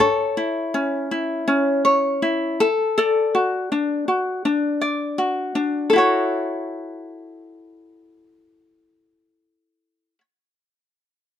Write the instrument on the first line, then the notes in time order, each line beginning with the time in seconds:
ukulele
0.00 A4 C#5
0.37 E4
0.74 C#4
1.11 E4
1.48 C#4
1.85 C#5
2.22 E4
2.60 A4
2.98 A4 D5
3.35 F#4
3.72 D4
4.08 F#4
4.45 D4
4.81 D5
5.18 F#4
5.55 D4
5.90 E4 A4
5.96 F#4 C#5